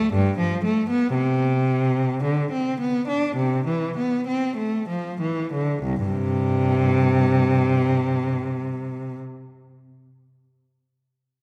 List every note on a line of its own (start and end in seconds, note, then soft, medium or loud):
0.00 0.14 A3 medium
0.14 0.38 G2 medium
0.39 0.63 F3 medium
0.64 0.88 A3 medium
0.90 1.15 B3 medium
1.15 2.22 C3 medium
2.24 2.51 D3 soft
2.52 2.79 C4 soft
2.81 3.08 B3 medium
3.08 3.36 D4 medium
3.36 3.65 C3 medium
3.67 3.96 E3 soft
3.97 4.26 B3 soft
4.28 4.57 C4 soft
4.57 4.87 A3 soft
4.89 5.21 F3 soft
5.21 5.52 E3 soft
5.53 5.83 D3 soft
5.83 6.06 C2 medium
6.06 8.37 G2 soft
6.06 9.19 C3 medium